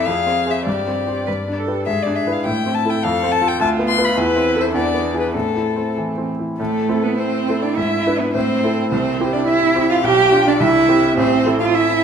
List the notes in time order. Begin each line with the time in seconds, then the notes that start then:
0.06 F2 G#4 F5
0.27 C4
0.46 G#4 C5
0.51 E5
0.66 G2 G4 D5
0.87 C4
1.07 G4 C5
1.26 G2 B4
1.48 D4
1.57 A4
1.68 G4 B4
1.86 G#2 G#4 E5
2.03 D4 D5
2.16 E5
2.27 E4 B4
2.32 F5
2.46 A2 E4 G5
2.66 C4
2.75 A5
2.85 E4 A4
2.90 G5
3.04 F2 A4 F5
3.23 C4
3.32 A5
3.41 F4 A4
3.48 G5
3.60 D2 F4 A5
3.79 B3
3.88 C6
3.98 F4 B4
4.05 B5
4.17 E2 E4 B4
4.37 C4
4.55 E4 A4
4.61 C5
4.74 E2 D4 D5
4.95 B3
5.14 E4 G#4
5.20 B4
5.35 A2 C4 A4
5.56 E4
5.76 C4
5.97 E3
6.18 C4
6.39 E4
6.58 A2 A3 A4
6.89 C4 E4 A4
7.03 B3 B4
7.18 C4 C5
7.48 C4 E4 A4
7.62 D4 D5
7.76 G#2 E4 E5
8.06 D4 E4 B4
8.20 B3 B4
8.34 A2 C4 C5
8.63 C4 E4 A4
8.91 C2 C4 C5
9.20 C4 E4 G4
9.33 D4 D5
9.48 E4 E5
9.76 C4 E4 G4
9.90 F4 F5
10.04 B1 G4 G5
10.32 D4 F4 G4
10.47 D4 D5
10.60 C2 E4 E5
10.89 C4 E4 G4
11.17 A1 C4 C5
11.46 C4 E4 A4
11.60 F4 F5
11.74 E4 E5